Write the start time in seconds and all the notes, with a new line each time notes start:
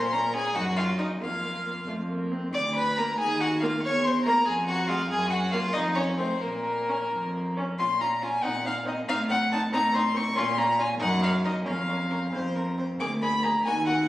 Already playing: A#2 C6
0.13 C#4 A#4 A#5
0.33 C#4 G#4 G#5
0.54 F#2 D#4 F#4 F#5
0.76 D#4 F4 F5
0.98 D#4 D#5
1.21 F2 A#3 F4 F5
1.44 A#3
1.66 A#3
1.87 F2 A3
2.09 A#3
2.31 C4
2.53 D2 D5 D6
2.76 B4 B5
2.97 A#3 A#4 A#5
3.18 D#2 G#4 G#5
3.40 F#4 F#5
3.60 A#3 F4 F5
3.83 E2 C#5 C#6
4.04 C5 C6
4.25 A#3 A#4 A#5
4.45 F2 G#4 G#5
4.67 F#4 F#5
4.87 G#3 F4 F5
5.10 F#2 G#4 G#5
5.30 F#4 F#5
5.52 A#3 F4 F5
5.73 F2 D#4 D#5
5.95 C#4 C#5
6.18 A3 C4 C5
6.41 A#2 A#3 A#4
6.88 C#4
7.12 F2
7.57 C#4
7.79 A#2 C#4 F4 C6
8.00 C#4 F4 A#5
8.22 C#4 F4 G#5
8.43 A#2 C4 D#4 F#5
8.64 C4 D#4 F5
8.85 C4 D#4 D#5
9.08 A2 C4 D#4 F5
9.29 C4 D#4 F#5
9.51 C4 D#4 A5
9.72 A2 C4 D#4 A#5
9.92 C4 D#4 C6
10.15 C4 D#4 C#6
10.36 A#2 C#4 F4 C6
10.57 C#4 F4 A#5
10.79 C#4 F4 G#5
11.00 F#2 D#4 A#4 F#5
11.21 D#4 A#4 F5
11.44 D#4 A#4 D#5
11.65 F2 C#4 A#4 F5
11.88 C#4 A#4
12.10 C#4 A#4
12.32 F2 C4 C5
12.55 C4 A#4
12.77 C4 C5
12.99 D2 A#3 G#4 D6
13.21 A#3 G#4 B5
13.43 A#3 G#4 A#5
13.65 D#2 A#3 F#4 G#5
13.87 A#3 F#4 F#5